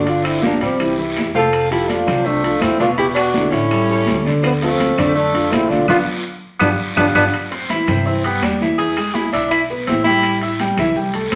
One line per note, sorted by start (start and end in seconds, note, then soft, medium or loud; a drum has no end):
0.00 0.56 G1 medium
0.06 0.36 D3 medium
0.06 0.23 D4 medium
0.06 0.36 D4 medium
0.06 0.24 F4 medium
0.06 0.37 D5 medium
0.06 high conga soft
0.06 high timbale medium
0.06 long guiro medium
0.06 maracas medium
0.24 0.41 C4 medium
0.24 0.43 E4 medium
0.24 high conga soft
0.24 high timbale medium
0.24 claves medium
0.42 0.73 F3 medium
0.42 0.60 A#3 medium
0.42 0.61 D4 loud
0.42 0.73 F4 medium
0.42 0.73 G4 medium
0.42 high conga loud
0.42 short guiro medium
0.42 maracas medium
0.61 1.12 C2 medium
0.61 0.95 G3 medium
0.61 0.96 C4 medium
0.61 high timbale medium
0.61 short guiro medium
0.61 maracas soft
0.79 0.95 E3 medium
0.79 0.95 E4 medium
0.79 0.95 G4 medium
0.79 high conga soft
0.79 high timbale medium
0.79 long guiro medium
0.79 claves medium
0.79 maracas medium
0.98 1.28 E3 medium
0.98 1.28 E4 medium
0.98 1.29 G4 medium
0.98 high conga soft
0.98 maracas medium
1.16 2.02 F2 medium
1.16 high conga medium
1.16 high timbale medium
1.16 low timbale medium
1.16 short guiro medium
1.16 maracas medium
1.35 1.64 C3 medium
1.35 1.65 C4 medium
1.35 1.69 F4 medium
1.35 1.69 A4 loud
1.35 1.65 C5 medium
1.35 high conga medium
1.35 short guiro medium
1.35 maracas soft
1.52 high timbale medium
1.52 long guiro medium
1.52 claves medium
1.52 maracas medium
1.71 2.01 F3 medium
1.71 1.90 E4 medium
1.71 2.01 F4 medium
1.71 1.91 G4 medium
1.71 2.01 A4 medium
1.71 high conga soft
1.71 high timbale medium
1.71 maracas medium
1.89 2.27 D4 medium
1.89 2.29 F4 loud
1.89 high conga medium
1.89 high timbale medium
1.89 short guiro medium
1.89 maracas medium
2.06 2.58 C2 loud
2.06 2.37 C3 medium
2.06 2.37 C4 medium
2.06 2.37 C5 medium
2.06 high conga soft
2.06 low conga medium
2.06 high timbale medium
2.06 short guiro medium
2.06 claves medium
2.06 maracas soft
2.25 2.63 A3 medium
2.25 2.64 D4 loud
2.25 high conga soft
2.25 long guiro medium
2.25 maracas medium
2.44 2.74 F3 medium
2.44 2.74 F4 medium
2.44 2.74 A4 medium
2.44 high conga soft
2.44 high timbale medium
2.61 3.47 E2 medium
2.61 2.79 C4 medium
2.61 2.80 E4 medium
2.61 high conga medium
2.61 high timbale loud
2.61 short guiro medium
2.61 claves medium
2.61 maracas medium
2.80 2.95 B2 loud
2.80 2.95 B3 medium
2.80 2.88 D4 medium
2.80 2.89 F4 loud
2.80 2.95 B4 medium
2.80 high conga medium
2.80 short guiro medium
2.80 maracas soft
2.98 3.28 B2 medium
2.98 3.29 B3 medium
2.98 3.06 E4 medium
2.98 3.07 G4 loud
2.98 3.29 B4 medium
2.98 high conga soft
2.98 high timbale medium
2.98 long guiro medium
2.98 maracas medium
3.15 3.52 D4 medium
3.15 3.55 F#4 loud
3.15 high conga soft
3.15 high timbale loud
3.15 claves medium
3.34 3.65 D3 medium
3.34 3.65 D4 medium
3.34 3.65 E4 medium
3.34 high conga loud
3.34 short guiro medium
3.34 maracas medium
3.51 4.04 A1 loud
3.51 4.25 C#4 medium
3.51 4.26 E4 medium
3.51 high conga soft
3.51 high timbale medium
3.51 short guiro medium
3.51 maracas soft
3.71 3.86 G3 medium
3.71 3.86 G4 medium
3.71 3.86 A4 medium
3.71 high timbale medium
3.71 long guiro medium
3.71 claves medium
3.71 maracas medium
3.89 4.19 G3 medium
3.89 4.19 G4 medium
3.89 4.20 A4 medium
3.89 high conga soft
3.89 maracas medium
4.06 4.93 D2 medium
4.06 high conga medium
4.06 high timbale medium
4.06 short guiro medium
4.06 maracas medium
4.25 4.56 D3 loud
4.25 4.56 D4 medium
4.25 4.56 D5 medium
4.25 high conga medium
4.25 short guiro medium
4.25 maracas soft
4.43 4.51 F3 medium
4.43 4.52 B3 medium
4.43 high conga soft
4.43 high timbale medium
4.43 long guiro medium
4.43 claves medium
4.43 maracas medium
4.61 4.92 F3 medium
4.61 5.12 A3 medium
4.61 5.12 C4 medium
4.61 4.92 F4 medium
4.61 4.93 A4 medium
4.61 high conga soft
4.61 high timbale medium
4.61 maracas medium
4.79 high conga medium
4.79 high timbale medium
4.79 short guiro medium
4.79 maracas medium
4.97 5.48 F2 medium
4.97 5.28 D3 medium
4.97 5.28 D4 medium
4.97 5.28 D5 medium
4.97 high conga soft
4.97 low conga medium
4.97 high timbale medium
4.97 short guiro medium
4.97 claves medium
4.97 maracas soft
5.15 5.53 A3 medium
5.15 5.54 D4 loud
5.15 high conga soft
5.15 long guiro medium
5.15 maracas medium
5.34 5.64 F3 medium
5.34 5.64 F4 medium
5.34 5.64 A4 medium
5.34 high conga soft
5.34 high timbale medium
5.51 5.86 B1 loud
5.51 5.71 C4 medium
5.51 5.72 E4 medium
5.51 high conga medium
5.51 high timbale loud
5.51 low timbale medium
5.51 short guiro medium
5.51 claves medium
5.51 maracas medium
5.69 5.85 D3 medium
5.69 5.88 D4 medium
5.69 5.85 D4 medium
5.69 5.89 F4 loud
5.69 5.86 D5 medium
5.69 high conga medium
5.69 short guiro medium
5.69 maracas soft
5.88 6.02 B1 medium
5.88 5.97 B3 medium
5.88 6.01 B3 loud
5.88 6.01 D4 medium
5.88 6.01 F4 medium
5.88 5.98 F4 loud
5.88 low conga loud
5.88 high timbale loud
5.88 long guiro medium
5.88 claves medium
5.88 maracas medium
6.60 6.74 G1 medium
6.60 6.69 B3 medium
6.60 6.72 D4 medium
6.60 6.70 D4 medium
6.60 6.73 F4 medium
6.60 6.72 G4 medium
6.60 low conga loud
6.60 high timbale medium
6.60 long guiro loud
6.60 claves loud
6.60 maracas loud
6.96 7.10 G1 medium
6.96 7.06 B3 medium
6.96 7.09 D4 loud
6.96 7.06 D4 medium
6.96 7.08 F4 loud
6.96 7.09 G4 loud
6.96 low conga loud
6.96 high timbale loud
6.96 long guiro loud
6.96 claves medium
6.96 maracas loud
7.15 7.28 G1 medium
7.15 7.24 B3 loud
7.15 7.27 D4 loud
7.15 7.25 D4 loud
7.15 7.27 F4 medium
7.15 7.27 G4 medium
7.15 low conga medium
7.15 high timbale medium
7.15 long guiro loud
7.15 claves loud
7.15 maracas medium
7.33 high conga soft
7.33 high timbale medium
7.33 long guiro medium
7.33 claves medium
7.33 maracas medium
7.51 7.66 C4 medium
7.51 7.67 C5 medium
7.51 7.67 C6 medium
7.51 high conga soft
7.51 high timbale medium
7.70 7.85 E3 medium
7.70 8.08 E4 medium
7.70 7.85 E4 medium
7.70 7.85 E5 medium
7.70 high conga medium
7.70 high timbale medium
7.70 short guiro medium
7.70 maracas medium
7.87 8.38 G2 medium
7.87 8.03 C3 medium
7.87 8.03 C4 medium
7.87 8.03 C5 medium
7.87 high conga soft
7.87 low conga medium
7.87 high timbale medium
7.87 short guiro medium
7.87 claves medium
7.87 maracas soft
8.05 8.21 E3 medium
8.05 8.24 C4 medium
8.05 8.21 E4 medium
8.05 8.21 E5 medium
8.05 high conga soft
8.05 long guiro medium
8.05 maracas medium
8.24 8.54 G3 medium
8.24 8.44 B3 medium
8.24 8.55 G4 medium
8.24 8.55 G5 medium
8.24 high conga soft
8.24 high timbale medium
8.24 maracas medium
8.41 9.27 E2 medium
8.41 8.61 D4 medium
8.41 high conga medium
8.41 high timbale medium
8.41 short guiro medium
8.41 claves medium
8.41 maracas medium
8.61 8.76 E3 medium
8.61 8.76 E4 medium
8.61 8.76 E5 medium
8.61 high conga medium
8.61 short guiro medium
8.61 maracas soft
8.78 8.94 E3 medium
8.78 8.94 E4 medium
8.78 9.16 G#4 loud
8.78 high conga soft
8.78 high timbale medium
8.78 long guiro medium
8.78 maracas medium
8.96 9.27 G#3 medium
8.96 9.27 G#4 medium
8.96 9.27 G#5 medium
8.96 high conga soft
8.96 high timbale medium
8.96 claves medium
8.96 maracas medium
9.14 9.32 E4 medium
9.14 high conga medium
9.14 short guiro medium
9.14 maracas medium
9.33 9.83 B1 loud
9.33 9.50 D4 medium
9.33 9.63 E4 medium
9.33 9.63 E5 medium
9.33 9.63 E6 medium
9.33 high conga soft
9.33 high timbale medium
9.33 short guiro medium
9.33 maracas soft
9.50 9.62 E4 medium
9.50 high conga soft
9.50 high timbale medium
9.50 long guiro medium
9.50 claves medium
9.50 maracas medium
9.69 9.84 B3 medium
9.69 9.85 B4 medium
9.69 9.85 B5 medium
9.69 high conga soft
9.69 maracas medium
9.87 10.72 A1 medium
9.87 10.03 E3 medium
9.87 10.04 C4 medium
9.87 10.03 E4 medium
9.87 10.03 E5 medium
9.87 high conga medium
9.87 high timbale medium
9.87 low timbale medium
9.87 short guiro medium
9.87 maracas medium
10.04 10.35 G3 medium
10.04 10.38 E4 loud
10.04 10.36 G4 medium
10.04 10.36 G5 medium
10.04 high conga medium
10.04 short guiro medium
10.04 maracas soft
10.23 high conga soft
10.23 high timbale medium
10.23 long guiro medium
10.23 claves medium
10.23 maracas medium
10.41 10.57 E4 medium
10.41 10.57 E5 medium
10.41 10.57 E6 medium
10.41 high conga soft
10.41 high timbale medium
10.41 maracas medium
10.59 10.75 G3 medium
10.59 10.75 G4 medium
10.59 10.75 G5 medium
10.59 high conga medium
10.59 high timbale medium
10.59 short guiro medium
10.59 maracas medium
10.77 11.28 C2 loud
10.77 10.93 E3 medium
10.77 10.93 E4 medium
10.77 10.94 E5 medium
10.77 high conga soft
10.77 low conga medium
10.77 high timbale medium
10.77 short guiro medium
10.77 claves medium
10.77 maracas soft
10.96 11.11 G3 medium
10.96 11.11 G4 medium
10.96 11.11 G5 medium
10.96 high conga soft
10.96 low conga medium
10.96 long guiro medium
10.96 maracas medium
11.14 11.35 A3 medium
11.14 11.35 A4 medium
11.14 11.35 A5 medium
11.14 high conga soft
11.14 high timbale medium
11.14 maracas medium
11.32 11.35 C2 medium
11.32 11.35 C4 medium
11.32 high timbale loud
11.32 short guiro medium
11.32 claves medium
11.32 maracas medium